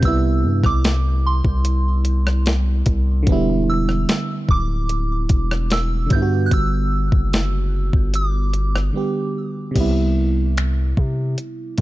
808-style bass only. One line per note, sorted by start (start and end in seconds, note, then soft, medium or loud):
0.03 0.45 C2 loud
0.44 0.63 G2 loud
0.64 1.41 C2 loud
1.45 2.83 C2 loud
2.87 3.25 C2 loud
3.27 4.05 E1 loud
4.49 5.27 D1 loud
5.30 6.08 E1 loud
6.11 6.50 G2 loud
6.52 7.10 G1 loud
7.12 7.90 F#1 loud
7.93 8.91 G1 loud
9.76 10.93 C2 loud
10.97 11.36 C3 loud